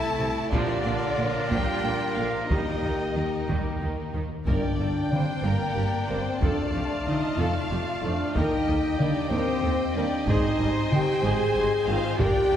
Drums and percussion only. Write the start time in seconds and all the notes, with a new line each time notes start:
0.52 taiko
1.51 taiko
2.50 taiko
3.50 taiko
4.47 taiko
5.12 taiko mid
6.42 taiko
7.07 taiko mid
8.36 taiko
9.00 taiko mid
10.28 taiko
10.92 taiko mid
12.19 taiko